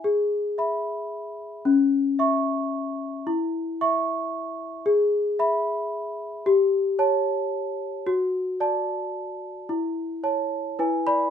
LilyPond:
\new Staff \with { instrumentName = "Celesta" } { \time 3/4 \key cis \minor \tempo 4 = 112 << { r2. | r2. | r2. | \key a \major r2. |
r2. | r2. | r2 r8 <d'' b''>8 | } \\ { gis'4 <e'' b''>2 | cis'4 <e'' cis'''>2 | e'4 <e'' cis'''>2 | gis'4 <e'' b''>2 |
g'4 <cis'' a''>2 | fis'4 <d'' a''>2 | e'4 <cis'' a''>4 <e' b' gis''>4 | } >> }